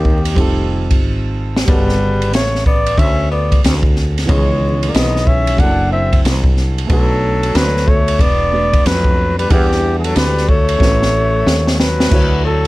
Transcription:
0.00 0.34 D#2 medium
0.00 0.99 D#3 medium
0.00 0.33 A#3 medium
0.00 0.34 C4 medium
0.00 0.35 D#4 medium
0.00 0.36 G4 medium
0.00 0.99 G4 medium
0.00 0.36 C5 medium
0.05 kick medium
0.25 ride medium
0.34 1.03 F1 medium
0.34 1.63 G3 medium
0.34 1.64 C4 medium
0.34 1.65 D#4 medium
0.34 kick medium
0.34 ride medium
0.39 1.66 F4 medium
0.39 1.67 A4 medium
0.91 kick medium
0.91 ride medium
1.03 1.65 G#1 medium
1.56 snare medium
1.65 2.34 G1 loud
1.65 4.25 C#3 medium
1.65 4.23 G3 medium
1.65 2.29 G3 medium
1.65 4.24 B3 medium
1.65 kick loud
1.65 ride medium
1.69 4.26 F#4 medium
1.69 4.26 A4 medium
1.69 2.30 B4 medium
1.89 snare soft
2.22 ride medium
2.33 2.95 A1 medium
2.33 2.64 A3 medium
2.33 2.64 C#5 medium
2.33 snare loud
2.33 hi-hat pedal soft
2.33 ride medium
2.55 snare soft
2.66 3.00 B3 medium
2.66 3.00 D5 medium
2.66 kick medium
2.86 ride medium
2.98 3.60 D2 medium
2.98 3.30 C#4 medium
2.98 3.31 E5 loud
2.98 kick medium
2.98 ride medium
3.31 3.61 B3 medium
3.31 3.61 D5 medium
3.52 kick medium
3.52 ride medium
3.64 4.26 D2 medium
3.64 snare loud
3.64 hi-hat pedal soft
3.64 ride medium
3.83 kick medium
3.96 snare soft
4.18 snare soft
4.18 ride medium
4.26 4.91 C#2 loud
4.26 5.55 E3 medium
4.26 4.90 G#3 medium
4.26 5.56 B3 soft
4.26 5.57 C#4 medium
4.26 4.91 C#5 medium
4.26 kick loud
4.26 ride medium
4.30 5.57 D#3 soft
4.30 5.58 G#4 medium
4.83 ride medium
4.89 4.96 A#3 medium
4.89 4.96 D5 medium
4.94 5.60 B1 medium
4.94 5.29 B3 medium
4.94 5.29 D#5 medium
4.94 snare loud
4.94 hi-hat pedal soft
4.94 ride medium
5.16 snare soft
5.27 5.61 C#4 medium
5.27 5.61 E5 medium
5.27 kick medium
5.47 ride medium
5.56 6.21 F#1 medium
5.56 6.85 F#3 medium
5.56 6.86 A#3 medium
5.56 6.87 D4 medium
5.56 5.91 D4 medium
5.56 5.92 F#5 loud
5.56 kick medium
5.56 ride medium
5.61 6.88 E4 medium
5.61 6.89 A4 medium
5.92 6.22 C4 medium
5.92 6.22 E5 medium
6.13 kick medium
6.13 ride medium
6.25 6.87 C2 medium
6.25 snare loud
6.25 hi-hat pedal soft
6.25 ride medium
6.44 kick medium
6.57 snare soft
6.78 ride medium
6.87 7.52 B1 loud
6.87 7.55 F#3 medium
6.87 8.48 A3 medium
6.87 8.49 B3 medium
6.87 8.50 D4 medium
6.87 kick loud
6.87 ride medium
6.91 8.50 F#4 medium
6.91 7.58 A4 medium
6.91 8.51 B4 medium
7.43 ride medium
7.55 8.17 D2 medium
7.55 7.89 F#3 medium
7.55 7.90 B4 medium
7.55 snare loud
7.55 hi-hat pedal soft
7.55 ride medium
7.77 snare soft
7.88 8.22 A3 medium
7.88 8.22 C#5 medium
7.88 kick medium
8.08 ride medium
8.19 8.82 E1 medium
8.19 8.87 B3 medium
8.19 8.88 D5 loud
8.19 kick medium
8.19 ride medium
8.51 9.50 A3 soft
8.51 9.50 B3 soft
8.51 9.47 D4 soft
8.51 9.51 F#4 soft
8.51 9.51 B4 soft
8.73 kick medium
8.73 ride medium
8.86 9.47 F2 medium
8.86 9.38 F#3 medium
8.86 9.38 B4 loud
8.86 snare loud
8.86 hi-hat pedal soft
8.86 ride medium
9.04 kick medium
9.38 9.52 G3 medium
9.38 9.53 B4 medium
9.38 ride medium
9.47 10.13 E2 loud
9.47 9.98 E3 medium
9.47 10.77 G3 medium
9.47 10.77 D4 medium
9.47 10.78 E4 medium
9.47 kick loud
9.47 ride medium
9.51 9.98 G4 medium
9.51 10.80 B4 medium
9.51 10.79 F#5 medium
9.72 snare soft
9.99 10.05 E3 soft
9.99 10.06 G#4 medium
10.04 10.18 F#3 medium
10.04 10.18 A4 medium
10.04 ride medium
10.16 10.78 D2 loud
10.16 10.51 G3 medium
10.16 10.50 B4 medium
10.16 snare loud
10.16 hi-hat pedal soft
10.16 ride medium
10.38 snare soft
10.49 11.73 A3 medium
10.49 11.74 C#5 medium
10.49 kick medium
10.69 ride medium
10.78 11.43 A1 medium
10.78 12.07 A3 medium
10.78 12.08 C#4 medium
10.78 12.09 F#4 soft
10.78 kick medium
10.78 snare medium
10.83 12.10 A4 medium
10.83 12.10 B4 medium
11.02 snare soft
11.46 12.08 D#2 medium
11.46 snare medium
11.67 snare medium
11.73 11.80 A3 medium
11.73 11.82 C#5 medium
11.79 12.44 F#3 medium
11.79 12.45 B4 medium
11.79 snare medium
12.00 snare medium
12.08 12.67 D2 medium
12.08 12.67 A3 medium
12.08 12.67 D4 medium
12.08 12.67 E4 medium
12.08 kick loud
12.08 crash medium
12.13 12.67 F#4 medium
12.13 12.67 C#5 medium
12.44 12.67 F#3 medium
12.44 12.67 A4 medium

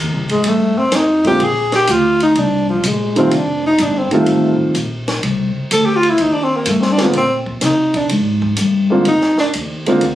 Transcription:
0.00 0.13 D#2 medium
0.13 0.28 C2 medium
0.29 0.44 A1 medium
0.29 0.49 G#3 medium
0.29 ride soft
0.44 0.75 G2 medium
0.44 0.80 A3 medium
0.44 ride medium
0.78 0.97 C4 medium
0.78 muted upright bass stroke soft
0.92 1.39 F2 medium
0.92 1.26 D#4 medium
0.92 snare soft
0.92 hi-hat pedal medium
0.92 ride medium
1.24 1.39 D3 medium
1.24 1.39 G#3 soft
1.24 1.39 A#3 soft
1.24 1.40 C4 soft
1.24 1.40 F4 medium
1.24 1.45 G4 medium
1.24 kick soft
1.24 ride soft
1.40 1.87 A#1 medium
1.40 1.75 G#4 medium
1.40 ride soft
1.72 1.92 G4 medium
1.72 snare soft
1.72 ride soft
1.87 2.34 D2 medium
1.87 2.22 F4 medium
1.87 hi-hat pedal medium
1.87 ride medium
2.20 2.40 D#4 medium
2.20 ride soft
2.35 2.82 C2 medium
2.35 2.69 D4 medium
2.35 ride medium
2.69 2.88 F3 medium
2.83 3.30 A#1 medium
2.83 3.17 G#3 medium
2.83 hi-hat pedal medium
2.83 ride medium
3.16 3.30 D#3 medium
3.16 3.30 G3 medium
3.16 3.31 A3 medium
3.16 3.31 C4 medium
3.16 3.36 C4 medium
3.16 3.31 F4 medium
3.16 ride soft
3.31 3.78 F1 medium
3.31 3.66 D4 medium
3.31 ride medium
3.67 3.84 D#4 medium
3.78 4.10 G1 medium
3.78 3.99 D4 medium
3.78 hi-hat pedal medium
3.78 ride medium
3.98 4.15 C4 medium
4.11 4.72 D#3 medium
4.11 4.72 G3 medium
4.11 4.72 A3 medium
4.11 4.60 A3 medium
4.11 4.72 C4 medium
4.11 4.73 F4 medium
4.11 muted upright bass stroke soft
4.11 ride soft
4.26 4.57 A1 medium
4.26 ride medium
4.59 muted upright bass stroke soft
4.74 5.21 A#1 medium
4.74 hi-hat pedal soft
4.74 ride medium
5.08 snare soft
5.08 ride soft
5.23 5.53 C2 medium
5.23 ride medium
5.56 muted upright bass stroke soft
5.71 6.17 D2 medium
5.71 5.87 A4 medium
5.71 hi-hat pedal medium
5.71 ride medium
5.86 5.97 G4 medium
5.96 6.11 F4 medium
6.03 ride soft
6.09 6.23 E4 medium
6.18 6.65 D#2 medium
6.18 6.34 D#4 medium
6.18 ride medium
6.33 6.45 D4 medium
6.43 6.58 C4 medium
6.56 6.71 A#3 medium
6.66 7.13 G2 medium
6.66 hi-hat pedal medium
6.66 ride medium
6.70 6.83 A3 medium
6.81 6.94 C4 medium
6.81 snare soft
6.92 7.06 D4 medium
6.98 7.13 D3 medium
6.98 7.13 G#3 soft
6.98 7.13 A#3 soft
6.98 7.14 C4 soft
6.98 7.14 F4 medium
6.98 snare soft
6.98 ride soft
7.05 7.13 B3 medium
7.13 7.61 A#2 medium
7.13 ride medium
7.17 7.36 C4 medium
7.46 kick soft
7.61 8.08 C3 medium
7.61 7.94 D#4 medium
7.61 snare soft
7.61 hi-hat pedal soft
7.61 ride medium
7.94 8.10 D4 medium
7.94 kick soft
7.94 ride soft
8.09 8.56 G#2 medium
8.09 ride medium
8.42 kick soft
8.56 9.04 G2 medium
8.56 hi-hat pedal medium
8.56 ride medium
8.90 9.04 D3 medium
8.90 9.04 G#3 medium
8.90 9.04 A#3 medium
8.90 9.04 C4 medium
8.90 9.05 F4 medium
9.05 9.36 F2 medium
9.05 9.37 D#4 medium
9.05 ride medium
9.21 snare soft
9.38 9.48 D4 medium
9.38 muted upright bass stroke soft
9.38 snare soft
9.53 10.00 D#2 medium
9.53 hi-hat pedal medium
9.53 ride medium
9.86 10.00 D3 medium
9.86 10.00 G#3 medium
9.86 10.00 A#3 medium
9.86 10.01 C4 medium
9.86 10.01 F4 medium
9.86 ride soft
10.01 10.15 D2 medium
10.01 ride medium

